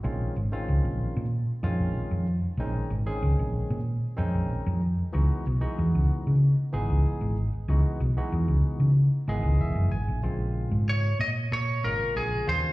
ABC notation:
X:1
M:4/4
L:1/16
Q:1/4=94
K:Bbm
V:1 name="Lead electric guitar"
z16 | z16 | z16 | z16 |
z4 d2 e2 d2 B2 A2 c2 |]
V:2 name="Tine electric piano"
z16 | z16 | z16 | z8 z2 e2 _f2 a2 |
z16 |]
V:3 name="Tine electric piano"
[E,A,CDF]2 z [E,A,CDF]4- [E,A,CDF] z2 [E,A,CDF]4 z2 | [E,A,CDE]2 z [E,A,CDA]4- [E,A,CDA] z2 [E,A,CDE]4 z2 | [_F,A,_CEG]2 z [F,A,CEG]4- [F,A,CEG] z2 [F,A,CEA]4 z2 | [_F,A,_CEG]2 z [F,A,CEG]4- [F,A,CEG] z2 [E,F,A,CA]4 z2 |
[D,A,B,CF]4- [D,A,B,CF] z4 z [D,A,B,CF]4 [D,=G,B,CF]2 |]
V:4 name="Fingered electric bass" clef=bass
B,,, z A,,, z D,, B,,, z B,,2 z F,, B,,, z F,,2 z | B,,, z A,,, z D,, B,,, z B,,2 z F,, B,,, z F,,2 z | D,, z _C,, z _F,, D,, z D,2 z A,,, D,, z A,,,2 z | D,, z _C,, z _F,, D,, z D,2 z A,,, D,, _F,,, G,,, A,,, B,,, |
B,,,3 A,,3 B,,2 B,,2 A,,, z B,,, z E,, z |]